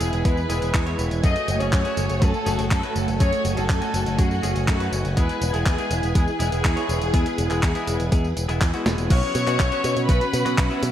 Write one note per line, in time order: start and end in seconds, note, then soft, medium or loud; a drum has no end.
0.00 0.10 E1 medium
0.00 0.22 G#3 medium
0.00 0.22 B3 medium
0.00 0.22 E4 medium
0.00 1.20 E4 medium
0.00 0.22 G#4 loud
0.00 1.20 G#4 medium
0.00 1.20 B4 medium
0.00 9.06 G#5 medium
0.00 closed hi-hat medium
0.00 tambourine medium
0.13 0.23 E1 medium
0.13 closed hi-hat soft
0.13 tambourine soft
0.25 0.45 E2 medium
0.25 0.40 G#3 medium
0.25 0.40 B3 medium
0.25 0.40 E4 medium
0.25 0.40 G#4 medium
0.25 0.99 B4 loud
0.25 kick loud
0.25 closed hi-hat medium
0.25 tambourine soft
0.37 tambourine soft
0.49 0.60 E1 medium
0.49 0.84 G#3 medium
0.49 0.84 B3 medium
0.49 0.84 E4 medium
0.49 0.84 G#4 loud
0.49 closed hi-hat medium
0.49 tambourine medium
0.62 0.72 E1 medium
0.62 closed hi-hat soft
0.62 tambourine soft
0.74 0.94 E2 medium
0.74 kick loud
0.74 clap loud
0.74 closed hi-hat medium
0.74 tambourine soft
0.86 1.21 G#3 medium
0.86 1.21 B3 medium
0.86 1.21 E4 medium
0.86 1.21 C#5 medium
0.86 closed hi-hat soft
0.86 tambourine soft
0.99 1.09 E1 medium
0.99 closed hi-hat soft
0.99 tambourine medium
1.11 1.21 E1 medium
1.11 closed hi-hat soft
1.11 tambourine soft
1.23 1.33 F#2 medium
1.23 1.57 A3 medium
1.23 5.13 A3 medium
1.23 1.57 C#4 medium
1.23 5.13 F#4 medium
1.23 1.57 F#4 medium
1.23 1.57 G#4 medium
1.23 3.18 C#5 medium
1.23 1.58 D#5 loud
1.23 kick loud
1.23 closed hi-hat medium
1.23 tambourine soft
1.36 closed hi-hat soft
1.36 tambourine soft
1.48 1.58 F#1 medium
1.48 closed hi-hat medium
1.48 tambourine medium
1.60 1.70 F#1 medium
1.60 1.82 A3 medium
1.60 1.82 C#4 medium
1.60 1.82 F#4 medium
1.60 1.82 G#4 medium
1.60 1.72 C#5 loud
1.60 closed hi-hat soft
1.60 tambourine soft
1.73 1.83 F#2 medium
1.73 2.19 C#5 loud
1.73 kick loud
1.73 clap loud
1.73 closed hi-hat medium
1.73 tambourine soft
1.85 2.19 A3 medium
1.85 2.19 C#4 medium
1.85 2.19 F#4 medium
1.85 2.19 G#4 loud
1.85 closed hi-hat soft
1.85 tambourine soft
1.97 2.07 F#1 medium
1.97 closed hi-hat medium
1.97 tambourine medium
2.09 2.19 F#1 medium
2.09 closed hi-hat soft
2.09 tambourine soft
2.21 2.32 F#2 medium
2.21 2.37 A3 medium
2.21 2.37 C#4 medium
2.21 2.37 F#4 medium
2.21 2.37 G#4 medium
2.21 2.70 A4 loud
2.21 kick loud
2.21 closed hi-hat medium
2.21 tambourine soft
2.34 tambourine soft
2.46 2.56 F#1 loud
2.46 2.80 A3 medium
2.46 2.80 C#4 medium
2.46 2.80 F#4 medium
2.46 2.80 G#4 loud
2.46 closed hi-hat medium
2.46 tambourine medium
2.59 2.69 F#1 medium
2.59 closed hi-hat soft
2.59 tambourine soft
2.71 2.81 F#2 medium
2.71 3.05 A4 loud
2.71 kick loud
2.71 clap loud
2.71 closed hi-hat medium
2.71 tambourine soft
2.83 3.17 A3 medium
2.83 3.17 C#4 medium
2.83 3.17 F#4 medium
2.83 3.17 B4 medium
2.83 closed hi-hat soft
2.83 tambourine soft
2.96 3.06 F#1 medium
2.96 closed hi-hat soft
2.96 tambourine medium
3.08 3.18 F#1 loud
3.08 closed hi-hat soft
3.08 tambourine soft
3.20 3.30 F#2 medium
3.20 3.54 A3 medium
3.20 3.54 C#4 medium
3.20 3.54 F#4 medium
3.20 3.54 G#4 medium
3.20 3.55 C#5 loud
3.20 5.15 D#5 medium
3.20 kick loud
3.20 closed hi-hat medium
3.20 tambourine soft
3.33 closed hi-hat soft
3.33 tambourine soft
3.45 3.55 F#1 loud
3.45 closed hi-hat medium
3.45 tambourine medium
3.57 3.67 F#1 medium
3.57 3.79 A3 medium
3.57 3.79 C#4 medium
3.57 3.79 F#4 medium
3.57 3.79 G#4 medium
3.57 3.68 A4 medium
3.57 closed hi-hat soft
3.57 tambourine soft
3.69 3.79 F#2 medium
3.69 4.15 A4 loud
3.69 kick loud
3.69 clap loud
3.69 closed hi-hat medium
3.69 tambourine soft
3.81 4.16 A3 medium
3.81 4.16 C#4 medium
3.81 4.16 F#4 medium
3.81 4.16 G#5 loud
3.81 closed hi-hat soft
3.81 tambourine soft
3.94 4.04 F#1 medium
3.94 closed hi-hat medium
3.94 tambourine medium
4.06 4.16 F#1 medium
4.06 closed hi-hat soft
4.06 tambourine soft
4.18 4.38 F#2 medium
4.18 4.33 A3 medium
4.18 4.33 C#4 medium
4.18 4.67 F#4 loud
4.18 4.33 F#4 medium
4.18 4.33 G#4 medium
4.18 kick loud
4.18 closed hi-hat medium
4.18 tambourine soft
4.31 tambourine soft
4.43 4.53 F#1 medium
4.43 4.77 A3 medium
4.43 4.77 C#4 medium
4.43 4.77 F#4 medium
4.43 4.77 G#4 medium
4.43 closed hi-hat medium
4.43 tambourine medium
4.55 4.65 F#1 medium
4.55 closed hi-hat soft
4.55 tambourine soft
4.68 4.88 F#2 medium
4.68 5.02 F#4 medium
4.68 kick loud
4.68 clap loud
4.68 closed hi-hat medium
4.68 tambourine soft
4.80 5.14 A3 medium
4.80 5.14 C#4 medium
4.80 5.14 F#4 medium
4.80 5.14 B4 medium
4.80 closed hi-hat soft
4.80 tambourine soft
4.92 5.02 F#1 medium
4.92 closed hi-hat soft
4.92 tambourine medium
5.05 5.15 F#1 medium
5.05 closed hi-hat soft
5.05 tambourine soft
5.16 5.27 E2 loud
5.16 5.51 G#3 medium
5.16 5.51 B3 medium
5.16 9.06 E4 medium
5.16 5.51 E4 medium
5.16 9.06 G#4 medium
5.16 5.51 G#4 medium
5.16 5.51 B4 loud
5.16 9.06 B4 medium
5.16 kick loud
5.16 closed hi-hat loud
5.16 tambourine soft
5.29 closed hi-hat soft
5.29 tambourine soft
5.41 5.51 E1 loud
5.41 closed hi-hat medium
5.41 tambourine medium
5.53 5.64 E1 medium
5.53 5.75 G#3 medium
5.53 5.75 B3 medium
5.53 5.75 E4 medium
5.53 5.75 G#4 medium
5.53 5.65 G#4 medium
5.53 closed hi-hat soft
5.53 tambourine soft
5.66 5.76 E2 medium
5.66 6.12 G#4 loud
5.66 kick loud
5.66 clap loud
5.66 closed hi-hat medium
5.66 tambourine soft
5.78 6.12 G#3 medium
5.78 6.12 B3 medium
5.78 6.12 E4 medium
5.78 6.12 G#4 loud
5.78 closed hi-hat soft
5.78 tambourine soft
5.91 6.01 E1 medium
5.91 closed hi-hat medium
5.91 tambourine medium
6.03 6.13 E1 medium
6.03 closed hi-hat soft
6.03 tambourine soft
6.15 6.25 E2 loud
6.15 6.30 G#3 loud
6.15 6.30 B3 medium
6.15 6.30 E4 medium
6.15 8.57 G#4 loud
6.15 6.30 G#4 medium
6.15 kick loud
6.15 closed hi-hat medium
6.15 tambourine soft
6.28 tambourine soft
6.39 6.50 E1 loud
6.39 6.74 G#3 medium
6.39 6.74 B3 medium
6.39 6.74 E4 medium
6.39 6.74 G#4 medium
6.39 closed hi-hat medium
6.39 tambourine medium
6.52 6.62 E1 medium
6.52 closed hi-hat soft
6.52 tambourine soft
6.64 6.74 E2 medium
6.64 kick loud
6.64 clap loud
6.64 closed hi-hat medium
6.64 tambourine soft
6.76 7.11 G#3 medium
6.76 7.11 B3 medium
6.76 7.11 E4 medium
6.76 7.11 C#5 medium
6.76 closed hi-hat soft
6.76 tambourine soft
6.89 6.99 E1 loud
6.89 closed hi-hat soft
6.89 tambourine medium
7.01 7.11 E1 loud
7.01 closed hi-hat soft
7.01 tambourine soft
7.13 7.24 E2 loud
7.13 7.48 G#3 medium
7.13 7.48 B3 medium
7.13 7.48 E4 medium
7.13 7.48 G#4 medium
7.13 kick loud
7.13 closed hi-hat medium
7.13 tambourine soft
7.26 closed hi-hat soft
7.26 tambourine soft
7.38 7.48 E1 medium
7.38 closed hi-hat medium
7.38 tambourine medium
7.50 7.61 E1 medium
7.50 7.72 G#3 medium
7.50 7.72 B3 medium
7.50 7.72 E4 medium
7.50 7.72 G#4 medium
7.50 clap soft
7.50 closed hi-hat soft
7.50 tambourine soft
7.63 7.73 E2 medium
7.63 kick loud
7.63 clap loud
7.63 closed hi-hat loud
7.63 tambourine soft
7.75 8.09 G#3 medium
7.75 8.09 B3 medium
7.75 8.09 E4 medium
7.75 8.09 G#4 loud
7.75 closed hi-hat soft
7.75 tambourine soft
7.87 7.97 E1 medium
7.87 closed hi-hat medium
7.87 tambourine medium
8.00 8.10 E1 medium
8.00 closed hi-hat soft
8.00 tambourine soft
8.12 8.32 E2 loud
8.12 8.27 G#3 medium
8.12 8.27 B3 medium
8.12 8.27 E4 medium
8.12 8.27 G#4 loud
8.12 kick loud
8.12 closed hi-hat loud
8.12 tambourine soft
8.24 tambourine soft
8.37 8.47 E1 medium
8.37 closed hi-hat medium
8.37 tambourine medium
8.48 8.59 E1 medium
8.48 8.71 G#3 medium
8.48 8.71 B3 medium
8.48 8.71 E4 medium
8.48 8.71 G#4 loud
8.48 closed hi-hat soft
8.48 tambourine soft
8.61 8.71 E2 loud
8.61 kick loud
8.61 clap loud
8.61 closed hi-hat medium
8.61 tambourine soft
8.73 9.07 G#3 medium
8.73 9.07 B3 medium
8.73 9.07 E4 medium
8.73 9.07 F#4 medium
8.73 closed hi-hat soft
8.73 tambourine soft
8.86 8.96 E1 medium
8.86 snare medium
8.86 closed hi-hat soft
8.86 tambourine medium
8.98 9.08 E1 loud
8.98 closed hi-hat soft
8.98 tambourine soft
9.10 9.20 B1 loud
9.10 9.44 F#3 medium
9.10 9.44 B3 medium
9.10 9.44 C#4 medium
9.10 10.92 C#4 medium
9.10 10.92 F#4 medium
9.10 9.44 F#4 medium
9.10 10.92 B4 medium
9.10 10.05 C#5 loud
9.10 10.92 F#5 medium
9.10 10.05 C#6 medium
9.10 kick loud
9.10 closed hi-hat medium
9.10 crash loud
9.10 tambourine soft
9.23 tambourine soft
9.35 9.45 B2 loud
9.35 closed hi-hat medium
9.35 tambourine medium
9.47 9.57 B2 medium
9.47 9.69 F#3 medium
9.47 9.69 B3 medium
9.47 9.69 C#4 medium
9.47 9.69 F#4 medium
9.47 clap soft
9.47 closed hi-hat medium
9.47 tambourine soft
9.60 9.70 B1 medium
9.60 kick loud
9.60 clap loud
9.60 closed hi-hat medium
9.60 tambourine soft
9.71 10.06 F#3 medium
9.71 10.06 B3 medium
9.71 10.06 C#4 medium
9.71 10.06 F#4 loud
9.71 closed hi-hat soft
9.71 tambourine soft
9.84 9.94 B2 medium
9.84 closed hi-hat medium
9.84 tambourine medium
9.96 10.06 B2 medium
9.96 closed hi-hat medium
9.96 tambourine soft
10.08 10.19 B1 medium
10.08 10.24 F#3 loud
10.08 10.24 B3 medium
10.08 10.24 C#4 medium
10.08 10.24 F#4 medium
10.08 10.83 B4 loud
10.08 10.83 B5 medium
10.08 kick loud
10.08 closed hi-hat medium
10.08 tambourine soft
10.21 closed hi-hat soft
10.21 tambourine soft
10.33 10.43 B2 loud
10.33 closed hi-hat medium
10.33 tambourine medium
10.45 10.56 B2 medium
10.45 10.67 F#3 medium
10.45 10.67 B3 medium
10.45 10.67 C#4 medium
10.45 10.67 F#4 loud
10.45 closed hi-hat medium
10.45 tambourine soft
10.58 10.68 B1 medium
10.58 kick loud
10.58 clap loud
10.58 closed hi-hat medium
10.58 tambourine soft
10.70 10.92 F#3 medium
10.70 10.92 B3 medium
10.70 10.92 C#4 medium
10.70 10.92 E4 medium
10.70 tambourine soft
10.83 10.92 B2 loud
10.83 closed hi-hat medium
10.83 tambourine medium